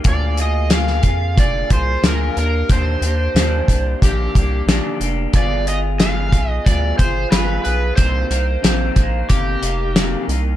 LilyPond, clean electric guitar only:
\new Staff \with { instrumentName = "Clean electric guitar" } { \time 4/4 \key c \minor \tempo 4 = 91 <d bes f' aes'>8 <bes f' aes'>8 <d bes f' aes'>8 <bes f' aes'>8 <d bes f' aes'>8 <bes f' aes'>8 <d bes f' aes'>8 <bes d' g'>8 | <ees bes d' g'>8 <bes d' g'>8 <ees bes d' g'>8 <bes d' g'>8 <ees bes d' g'>8 <bes d' g'>8 <ees bes d' g'>8 <bes d' g'>8 | <g b f' aes'>8 <b f' aes'>8 <g b f' aes'>8 <b f' aes'>8 <g b f' aes'>8 <f' aes'>8 <g b f' aes'>8 <b f' aes'>8 | <c bes ees' g'>8 <bes ees' g'>8 <c bes ees' g'>8 <bes ees' g'>8 <c bes ees' g'>8 <bes ees' g'>8 <c bes ees' g'>8 <bes ees' g'>8 | }